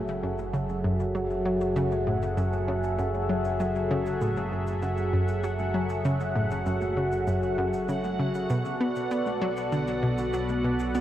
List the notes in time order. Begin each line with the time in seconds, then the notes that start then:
Already playing: F#1 F#3 F#4 G#4 A4 E5 F#5
0.08 shaker
0.23 F#2
0.39 shaker
0.54 C#3, shaker
0.69 high conga, shaker
0.84 F#2
1.00 shaker
1.15 F#3, shaker
1.30 shaker
1.46 F#3
1.61 shaker
1.76 C#3, shaker
1.92 high conga, shaker
2.07 A2
2.22 shaker
2.37 F#2, shaker
2.53 shaker
2.68 C#3
2.83 shaker
2.99 F#2, shaker
3.14 high conga, shaker
3.29 F#3
3.45 shaker
3.60 F#3, shaker
3.75 shaker
3.91 C#3
4.06 shaker
4.21 A2, shaker
4.37 high conga, shaker
4.52 F#2
4.67 shaker
4.82 C#3, shaker
4.98 shaker
5.13 F#2
5.28 shaker
5.44 F#3, shaker
5.59 high conga, shaker
5.74 F#3
5.89 shaker
6.05 C#3, shaker
6.20 shaker
6.35 A2
6.51 shaker
6.66 F#2, shaker
6.81 high conga, shaker
6.97 C#3
7.12 shaker
7.27 F#2, shaker
7.43 shaker
7.58 F#2
7.73 shaker
7.89 C#3, shaker
8.04 high conga, shaker
8.19 C#3
8.35 shaker
8.50 B2 B3 A4 B4 D5, shaker
8.65 shaker
8.80 B3
8.96 shaker
9.11 B3, shaker
9.26 high conga, shaker
9.42 F#3
9.57 shaker
9.72 D3, shaker
9.87 shaker
10.03 B2
10.18 shaker
10.34 F#3, shaker
10.49 high conga, shaker
10.64 B2
10.79 shaker
10.95 B3, shaker